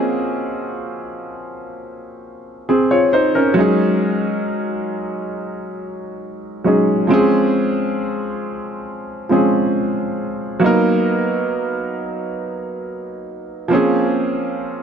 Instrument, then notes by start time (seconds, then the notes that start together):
grand piano
Already playing: F3 A#3 C4 C#4 G#4 G#5
2.69 C4 G#4
2.91 F4 C#5
3.13 D#4 C5
3.35 C#4 A#4
3.54 F#3 G#3 C#4
3.59 D#4 G#4
6.64 F#3 G#3 C#4 D#4 G#4
7.07 F3 G#3 C4
7.12 C#4 G#4
9.29 F3 G#3 C4 C#4 G#4
10.60 F#3 A#3 B3
10.64 D#4 A#4
13.68 F3 A#3 C4
13.73 C#4 G#4